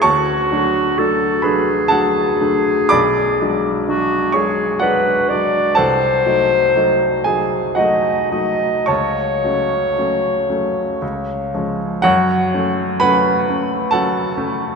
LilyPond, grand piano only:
<<
  \new Staff \with { instrumentName = "Grand piano" } { \time 3/4 \key fis \minor \tempo 4 = 62 <cis'' a'' cis'''>4. <b' b''>8 <a' fis'' a''>4 | <d'' b'' d'''>4. <cis'' cis'''>8 <fis' d'' fis''>4 | <a' ges'' a''>4. <gis' gis''>8 <ges' ees'' ges''>4 | <cis'' a'' cis'''>2~ <cis'' a'' cis'''>8 r8 |
<fis' cis'' fis''>4 <b' fis'' b''>4 <a' fis'' a''>4 | }
  \new Staff \with { instrumentName = "Grand piano" } { \time 3/4 \key fis \minor d,8 <fis a d'>8 <fis a d'>8 <fis a d'>8 <fis a d'>8 <fis a d'>8 | b,,8 <fis gis d'>8 <fis gis d'>8 <fis gis d'>8 <fis gis d'>8 <fis gis d'>8 | c,8 <ges a ees'>8 <ges a ees'>8 <ges a ees'>8 <ges a ees'>8 <ges a ees'>8 | cis,8 <fis a cis'>8 <fis a cis'>8 <fis a cis'>8 cis,8 <eis gis cis'>8 |
fis,8 <a cis'>8 <fis a cis'>8 <a cis'>8 <fis a cis'>8 <a cis'>8 | }
>>